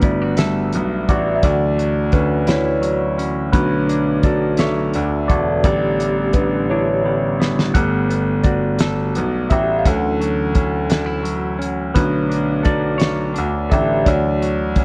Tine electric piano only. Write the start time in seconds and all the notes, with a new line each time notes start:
Already playing: A3 B3 D4 F#4 B4
0.04 F#4 D5
0.37 G3 E5
1.09 F#4 D5
1.35 E5
1.44 E3 F#3 A3 F#4 D5
2.13 D3 B4
2.48 E4 C#5
3.52 D3 A3 D4 B4 C#5
4.24 F#4 D5
4.59 A4 E5
5.28 F#4 D5
5.64 D3 G3 B3 G4 D5
6.33 D4 B4
6.70 E4 C#5
7.04 D3 G3 B3
7.74 G3 A3 B3 A4 F#5
8.44 F#4 D5
9.50 G4 E5
9.78 F5
9.86 E3 F#3 C#4 A4 F#5
11.95 D3 A3 D4 B4 C#5
12.65 F#4 D5
13.71 D3 A3 D4 G4 E5
14.05 E3 F#3 F#4 C#5 D5